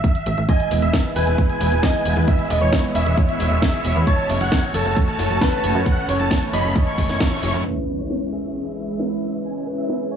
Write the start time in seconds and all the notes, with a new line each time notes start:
Already playing: E5
0.04 kick, closed hi-hat
0.15 closed hi-hat
0.26 A1, closed hi-hat
0.38 A1, closed hi-hat
0.49 D#5 G#5, kick, closed hi-hat
0.60 closed hi-hat
0.71 E1, open hi-hat
0.82 E1 E5, closed hi-hat
0.93 kick, snare, closed hi-hat
1.05 closed hi-hat
1.16 E1 B4 G#5, open hi-hat
1.27 E1, closed hi-hat
1.38 kick, closed hi-hat
1.49 G#5, closed hi-hat
1.61 E1, open hi-hat
1.72 E1, closed hi-hat
1.83 D#5, kick, snare, closed hi-hat
1.94 closed hi-hat
2.05 E1, open hi-hat
2.17 E2, closed hi-hat
2.28 E5, kick, closed hi-hat
2.39 closed hi-hat
2.50 E1 D#5, open hi-hat
2.61 E1 C#5, closed hi-hat
2.73 kick, snare, closed hi-hat
2.84 closed hi-hat
2.95 E1 E5, open hi-hat
3.06 E1, closed hi-hat
3.17 kick, closed hi-hat
3.29 E5, closed hi-hat
3.40 E1, open hi-hat
3.51 E1, closed hi-hat
3.62 kick, snare, closed hi-hat
3.73 closed hi-hat
3.85 E1, open hi-hat
3.96 E2, closed hi-hat
4.07 C#5 A5, kick, closed hi-hat
4.18 closed hi-hat
4.29 F#1, open hi-hat
4.41 F#1 F#5, closed hi-hat
4.52 kick, snare, closed hi-hat
4.63 closed hi-hat
4.74 F#1 A4 A5, open hi-hat
4.85 F#1, closed hi-hat
4.97 kick, closed hi-hat
5.08 A5, closed hi-hat
5.19 F#1, open hi-hat
5.30 F#1, closed hi-hat
5.41 B4, kick, snare, closed hi-hat
5.53 closed hi-hat
5.64 F#1, open hi-hat
5.75 F#2, closed hi-hat
5.86 F#5, kick, closed hi-hat
5.97 closed hi-hat
6.09 F#1 C#5, open hi-hat
6.20 F#1 A5, closed hi-hat
6.31 kick, snare, closed hi-hat
6.42 closed hi-hat
6.53 F#1 D#5 B5, open hi-hat
6.65 F#1, closed hi-hat
6.76 kick, closed hi-hat
6.87 C#6, closed hi-hat
6.98 F#1, kick, open hi-hat
7.09 F#1, snare, closed hi-hat
7.20 kick, snare, closed hi-hat
7.32 closed hi-hat
7.43 F#1, open hi-hat
7.54 F#2, closed hi-hat
7.65 B4 E5, impact
7.99 C#5
8.10 snare
8.32 G#4 E5
8.66 E5
9.00 B4, snare
9.44 G#5
9.67 B4
9.78 E5
9.89 snare
10.11 C#5 G#5